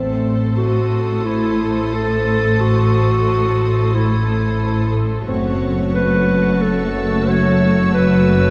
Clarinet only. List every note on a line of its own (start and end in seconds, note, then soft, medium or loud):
0.57 1.26 F#4 soft
1.25 1.95 E4 soft
1.94 2.60 A4 soft
2.61 3.96 F#4 medium
3.94 4.95 E4 soft
5.95 6.63 B4 medium
6.61 7.30 A4 soft
7.29 7.93 C#5 medium
7.94 8.50 B4 medium